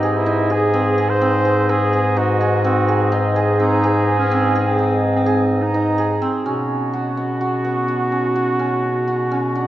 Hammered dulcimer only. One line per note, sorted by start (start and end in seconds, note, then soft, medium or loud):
0.00 0.73 C4 medium
0.00 0.26 D#4 medium
0.00 0.49 G#4 medium
0.26 2.16 D#4 medium
0.50 0.97 G#4 medium
0.74 1.21 C4 medium
0.98 1.45 G#4 medium
1.21 1.69 C4 medium
1.45 1.92 G#4 medium
1.69 2.64 C4 medium
1.93 2.40 G#4 medium
2.16 3.11 D#4 medium
2.41 2.88 G#4 medium
2.64 3.59 C4 medium
2.88 3.35 G#4 medium
3.12 4.78 D#4 medium
3.36 3.83 G#4 medium
3.60 4.31 C4 medium
3.84 4.55 G#4 medium
4.31 6.21 C4 medium
4.55 5.26 G#4 medium
4.79 5.74 D#4 medium
5.26 5.98 G#4 medium
5.74 9.35 D#4 medium
5.98 9.01 G#4 medium
6.22 6.52 C4 medium
6.46 8.11 C#4 medium
6.93 7.40 F#4 medium
7.17 7.64 B3 medium
7.41 7.88 F#4 medium
7.65 9.67 B3 medium
7.88 8.35 F#4 medium
8.12 8.59 C#4 medium
8.36 9.07 F#4 medium
8.59 9.31 C#4 medium
9.07 9.55 F#4 medium
9.31 9.67 C#4 medium
9.55 9.67 F#4 medium